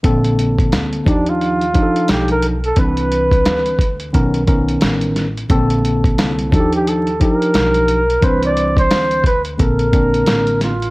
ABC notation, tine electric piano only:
X:1
M:4/4
L:1/8
Q:"Swing 16ths" 1/4=88
K:Bb
V:1 name="Tine electric piano"
[D,B,CA]3 [F,DEG]2 [F,DEGA]2 z | [=E,CD=B]3 z [^D,=B,^C^A] [D,B,CA]2 z | [_D,=D,B,CA]3 [F,DE_G=G]2 [F,DEG]2 z | [=E,CDc]3 z [D,B,CA] [D,B,CD]2 z |]